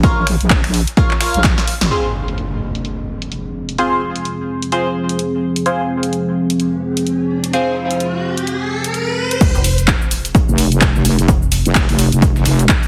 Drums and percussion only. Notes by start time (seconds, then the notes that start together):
0.03 kick, closed hi-hat
0.27 finger snap, snare, closed hi-hat, open hi-hat
0.41 closed hi-hat
0.50 kick, snare, clap, closed hi-hat, open hi-hat
0.64 finger snap, snare, open hi-hat
0.74 closed hi-hat, open hi-hat
0.87 closed hi-hat
0.97 kick, closed hi-hat
1.11 snare, clap
1.21 finger snap, snare, closed hi-hat, open hi-hat
1.34 closed hi-hat
1.44 kick, snare, clap, closed hi-hat
1.58 snare, closed hi-hat
1.68 open hi-hat
1.81 snare, closed hi-hat
1.91 closed hi-hat
2.28 closed hi-hat
2.38 closed hi-hat
2.75 closed hi-hat
2.85 closed hi-hat
3.22 closed hi-hat
3.32 closed hi-hat
3.69 closed hi-hat
3.78 closed hi-hat
4.16 closed hi-hat
4.25 closed hi-hat
4.62 closed hi-hat
4.72 closed hi-hat
5.09 closed hi-hat
5.19 closed hi-hat
5.56 closed hi-hat
5.66 closed hi-hat
6.03 closed hi-hat
6.13 closed hi-hat
6.50 closed hi-hat
6.60 closed hi-hat
6.97 closed hi-hat
7.07 closed hi-hat
7.44 closed hi-hat
7.53 closed hi-hat
7.91 closed hi-hat
8.00 closed hi-hat
8.38 closed hi-hat
8.47 closed hi-hat
8.84 closed hi-hat
8.94 closed hi-hat
9.31 closed hi-hat
9.41 kick, closed hi-hat, crash, shaker
9.55 closed hi-hat, shaker
9.64 closed hi-hat, open hi-hat, shaker
9.78 closed hi-hat, shaker
9.88 kick, snare, clap, closed hi-hat, shaker
10.02 shaker
10.11 closed hi-hat, open hi-hat, shaker
10.25 closed hi-hat, shaker
10.35 kick, closed hi-hat, shaker
10.49 shaker
10.58 closed hi-hat, open hi-hat, shaker
10.72 closed hi-hat, shaker
10.81 kick, snare, clap, closed hi-hat, shaker
10.95 shaker
11.05 closed hi-hat, open hi-hat, shaker
11.19 closed hi-hat, shaker
11.28 kick, closed hi-hat, shaker
11.42 shaker
11.52 snare, closed hi-hat, open hi-hat, shaker
11.66 closed hi-hat, shaker
11.75 kick, snare, clap, closed hi-hat, open hi-hat, shaker
11.89 snare, open hi-hat, shaker
11.99 closed hi-hat, open hi-hat, shaker
12.12 closed hi-hat, shaker
12.22 kick, closed hi-hat, shaker
12.36 snare, shaker
12.46 snare, closed hi-hat, open hi-hat, shaker
12.59 closed hi-hat, shaker
12.69 kick, clap, closed hi-hat, shaker
12.83 closed hi-hat, shaker